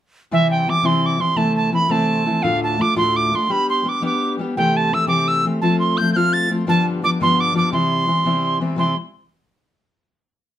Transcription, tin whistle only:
0.33 0.50 E5 medium
0.51 0.71 G5 medium
0.70 0.87 D6 medium
0.86 1.07 C6 medium
1.06 1.22 D6 medium
1.21 1.38 C6 medium
1.37 1.56 A5 medium
1.56 1.73 A5 medium
1.74 1.93 B5 medium
1.92 2.44 A5 medium
2.43 2.63 F5 medium
2.63 2.83 A5 medium
2.81 2.97 D6 medium
2.98 3.18 C6 medium
3.16 3.37 D6 medium
3.35 3.53 C6 medium
3.51 3.69 B5 medium
3.70 3.90 C6 medium
3.89 4.05 D6 medium
4.06 4.34 D6 medium
4.57 4.78 G5 medium
4.77 4.95 A5 medium
4.94 5.07 E6 medium
5.08 5.29 D6 medium
5.28 5.45 E6 medium
5.62 5.79 A5 medium
5.80 5.99 C6 medium
5.97 6.12 G6 medium
6.13 6.35 F6 medium
6.13 6.17 G6 medium
6.33 6.50 A6 medium
6.69 6.86 A5 medium
7.04 7.10 D6 medium
7.23 7.42 C6 medium
7.40 7.57 D6 medium
7.57 7.72 D6 medium
7.73 8.58 C6 medium
8.79 8.96 C6 medium

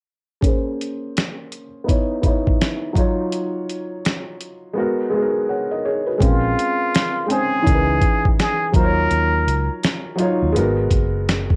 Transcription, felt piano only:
0.41 1.63 A#3 medium
0.41 1.64 C#4 medium
0.45 1.66 G#4 medium
0.45 1.67 C5 medium
1.84 2.17 B3 medium
1.84 2.18 D#4 medium
1.89 2.19 E4 medium
1.89 2.20 C#5 medium
2.22 2.85 B3 medium
2.22 2.86 D#4 medium
2.26 2.87 E4 medium
2.26 2.88 C#5 medium
2.93 4.16 F#3 medium
2.93 4.17 D#4 medium
2.97 4.18 F4 medium
2.97 4.19 C#5 loud
4.73 5.06 G#3 medium
4.73 5.07 B3 medium
4.73 5.08 F#4 medium
4.79 5.09 A#4 medium
5.10 5.74 G#3 medium
5.10 5.75 B3 medium
5.14 5.49 F#4 medium
5.14 5.22 G#4 medium
5.22 5.53 A#4 medium
5.49 5.71 C#5 medium
5.49 5.70 F#5 medium
5.71 5.84 A#4 medium
5.71 5.84 D#5 medium
5.85 6.07 G#4 medium
5.85 6.07 C#5 medium
6.06 6.42 F#4 soft
6.06 6.41 B4 medium
6.18 7.13 G#3 medium
6.18 7.14 C4 medium
6.22 7.15 C#4 medium
6.22 7.16 A#4 medium
7.26 7.64 G#3 medium
7.26 7.65 C4 medium
7.30 7.63 C#4 medium
7.30 7.67 C5 medium
7.62 8.58 E3 medium
7.62 8.58 C#4 medium
7.62 8.59 D#4 medium
7.68 7.75 A#4 medium
7.75 8.64 B4 medium
8.72 9.95 F#3 medium
8.72 9.96 D#4 medium
8.72 9.97 F4 medium
8.78 8.84 C5 medium
8.85 10.01 C#5 medium
10.16 10.53 F#3 medium
10.16 10.54 D#4 medium
10.16 10.55 F4 medium
10.22 10.56 C#5 medium
10.52 11.56 G#3 medium
10.52 11.56 B3 medium
10.52 11.56 F#4 medium
10.58 11.56 A#4 medium

